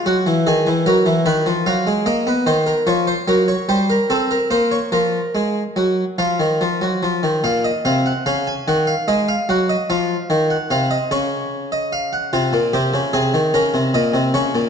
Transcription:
<<
  \new Staff \with { instrumentName = "Harpsichord" } { \time 6/8 \key ces \lydian \tempo 4. = 49 ges'8 aes'8 bes'8 b'8 f''8 dis''8 | \key bes \minor c''16 bes'16 des''16 c''16 bes'16 des''16 c''16 bes'16 a'16 bes'16 c''16 des''16 | bes'4. f''4. | f''16 ees''16 f''16 ges''16 f''16 aes''16 ges''16 f''16 ees''16 f''16 ges''16 ees''16 |
f''8. ges''16 f''16 ees''16 des''8. ees''16 f''16 ges''16 | f'8 g'8 aes'8 bes'8 ees''8 des''8 | }
  \new Staff \with { instrumentName = "Harpsichord" } { \clef bass \time 6/8 \key ces \lydian ges16 fes16 ees16 fes16 ges16 fes16 dis16 f16 fis16 aes16 bes16 b16 | \key bes \minor ees8 f8 ges8 g8 c'8 bes8 | f8 aes8 ges8 f16 ees16 f16 ges16 f16 ees16 | bes,8 c8 des8 ees8 aes8 ges8 |
f8 ees8 c8 des4. | c16 bes,16 c16 des16 c16 ees16 des16 c16 bes,16 c16 des16 bes,16 | }
>>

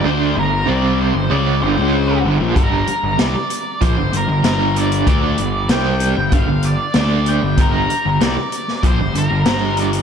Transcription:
<<
  \new Staff \with { instrumentName = "Lead electric guitar" } { \time 4/4 \key g \minor \tempo 4 = 96 c''8 bes'8 d''8 c''8 d''8 c''4 r8 | bes'4 d''4 c''8 bes'4 d''8 | d''4 g''4 f''8 d''4 g''8 | bes'4 d''4 c''8 bes'4 d''8 | }
  \new Staff \with { instrumentName = "Overdriven electric guitar" } { \clef bass \time 4/4 \key g \minor <d a d'>8 <g, d>8 <c g c'>8. <g, d>16 <cis aes cis'>8 <g, d>16 <cis aes cis'>8. <g, d>16 <bes, f>16 | <g, d g>8 r16 <g, d>16 <c g>16 r8. <bes, f>16 <g, d>16 <g, d>16 <g, d>16 <g, d g>4 | <d a d'>8 <g, d>8 <c g c'>8. <g, d>16 <g, d>16 <g, d>8 r16 <d a d'>8. <g, d>16 | <g, d g>8 r16 <g, d>16 <c g>16 r8. <bes, f>16 <g, d>16 <g, d>16 <g, d>16 <g, d g>4 | }
  \new Staff \with { instrumentName = "Overdriven electric guitar" } { \clef bass \time 4/4 \key g \minor <d a d'>8 <g, d>8 <c g c'>8. <g, d>16 <cis aes cis'>8 <g, d>16 <cis aes cis'>8. <g, d>16 <bes, f>16 | <g, d g>8 r16 <g, d>16 <c g>16 r8. <bes, f>16 <g, d>16 <g, d>16 <g, d>16 <g, d g>4 | <d a d'>8 <g, d>8 <c g c'>8. <g, d>16 <g, d>16 <g, d>8 r16 <d a d'>8. <g, d>16 | <g, d g>8 r16 <g, d>16 <c g>16 r8. <bes, f>16 <g, d>16 <g, d>16 <g, d>16 <g, d g>4 | }
  \new Staff \with { instrumentName = "Picked electric bass" } { \clef bass \time 4/4 \key g \minor d,8 g,,8 c,8. g,,16 cis,8 g,,16 cis,8. g,,16 bes,,16 | g,,8 r16 g,,16 c,16 r8. bes,,16 g,,16 g,,16 g,,16 g,,4 | d,8 g,,8 c,8. g,,16 g,,16 g,,8 r16 d,8. g,,16 | g,,8 r16 g,,16 c,16 r8. bes,,16 g,,16 g,,16 g,,16 g,,4 | }
  \new DrumStaff \with { instrumentName = "Drums" } \drummode { \time 4/4 r4 r4 r4 r4 | <hh bd>8 hh8 <hh sn>8 hh8 <hh bd>8 hh8 <hh sn>8 hh16 hh16 | <hh bd>8 hh8 <hh sn>8 hh8 <hh bd>8 hh8 <hh sn>8 hh8 | <hh bd>8 hh8 <hh sn>8 hh16 sn16 <hh bd>8 hh8 <hh sn>8 hh16 hh16 | }
>>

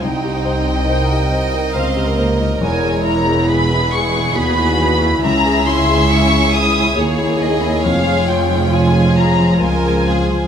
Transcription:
<<
  \new Staff \with { instrumentName = "Violin section" } { \time 3/4 \key des \lydian \tempo 4 = 69 g''2 f''8 r8 | gis''8 bes''8 b''8 des'''8 b''4 | bes''8 c'''8 des'''8 ees'''8 des''8 ees''8 | f''8 g''8 aes''8 bes''8 aes''4 | }
  \new Staff \with { instrumentName = "Violin section" } { \time 3/4 \key des \lydian << { ees''2. | des''4 b'4 b'4 | fes''2 des''4~ | des''2 c''4 | } \\ { ees'4 bes'2~ | bes'4 gis'2 | aes'2 aes'4~ | aes'4 aes'4 bes'8 aes'8 | } >> }
  \new Staff \with { instrumentName = "Grand piano" } { \time 3/4 \key des \lydian c,16 g'16 c''16 ees'16 c''16 g'16 c''16 ees'16 c''16 g'16 c''16 ees'16 | e,16 gis'16 e'16 gis16 gis'16 e'16 gis'16 e'16 gis'16 e'16 gis'16 e'16 | des,16 aes'16 fes'16 aes16 aes'16 fes'16 aes'16 fes'16 aes'16 fes'16 aes'16 fes'16 | f,16 aes'16 f'16 f16 f'16 aes'16 f'16 f16 f'16 aes'16 f'16 f16 | }
  \new Staff \with { instrumentName = "Viola section" } { \time 3/4 \key des \lydian << { ees'2. | e'2 ges'4 | fes'2 aes'4 | f'2 f'4 | } \\ { c'4 ees'8 ees'8 c'8 bes8 | gis4 gis4 b8 b8 | des'2 bes4 | aes2. | } >> }
  \new Staff \with { instrumentName = "Cello section" } { \clef bass \time 3/4 \key des \lydian c,2 des,4 | e,2 ees,4 | des,2 ees,4 | f,2 des,4 | }
  \new Staff \with { instrumentName = "Double bass section" } { \clef bass \time 3/4 \key des \lydian c,2 des,4 | e,,2 ees,4 | des,2 ees,4 | f,,2 des,4 | }
>>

